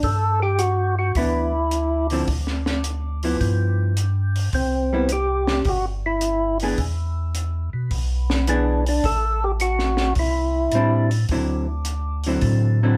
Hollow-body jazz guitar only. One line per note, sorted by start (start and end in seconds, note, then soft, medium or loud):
1.18 1.52 E3 soft
1.18 1.52 B3 medium
1.18 1.52 D4 medium
2.11 2.27 D3 medium
2.11 2.27 F3 medium
2.11 2.27 C4 medium
2.11 2.28 E4 medium
3.24 3.94 F3 medium
3.24 3.94 B3 soft
3.24 3.94 E4 medium
4.93 5.08 G3 medium
4.93 5.09 B3 medium
4.93 5.09 E4 medium
6.63 6.78 E3 soft
6.63 6.78 B3 medium
6.63 6.78 D4 medium
6.63 6.78 G#4 medium
8.48 8.83 E3 medium
8.48 8.83 B3 medium
8.48 8.83 D4 medium
8.48 8.83 G#4 medium
10.75 11.09 G3 medium
10.75 11.09 C4 medium
10.75 11.10 D4 medium
11.31 11.66 D3 medium
11.31 11.66 F#3 soft
11.31 11.66 C4 medium
11.31 11.66 E4 medium
12.26 12.79 D3 medium
12.26 12.79 F#3 medium
12.26 12.79 C4 medium
12.26 12.79 E4 medium
12.83 12.97 D3 medium
12.83 12.97 F#3 medium
12.83 12.97 C4 medium
12.83 12.97 E4 medium